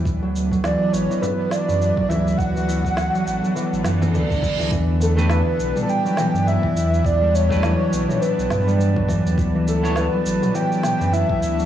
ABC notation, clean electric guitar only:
X:1
M:4/4
L:1/16
Q:"Swing 16ths" 1/4=103
K:Em
V:1 name="Clean electric guitar"
z16 | z16 | z3 [A,DGB]2 z8 z3 | z3 [A,DGB]2 z8 z3 |
z3 [B,EA^c]2 z8 z3 |]